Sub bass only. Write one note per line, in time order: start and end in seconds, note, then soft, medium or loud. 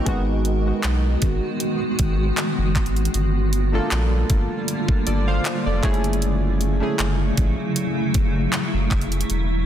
0.07 0.72 G#1 loud
0.84 1.17 B1 loud
1.22 1.40 G#1 medium
1.99 2.32 G#1 medium
2.58 2.77 F#1 loud
2.76 3.09 G#1 medium
3.14 3.80 G1 loud
3.91 4.24 A#1 medium
4.30 4.48 G1 medium
5.07 5.40 G1 medium
5.66 5.81 F1 medium
5.84 6.82 F#1 loud
6.99 7.32 F#1 medium
7.38 7.55 A1 medium
8.15 8.48 F#1 medium
8.74 8.89 F#1 medium
8.91 9.24 F1 medium
9.30 9.66 E1 loud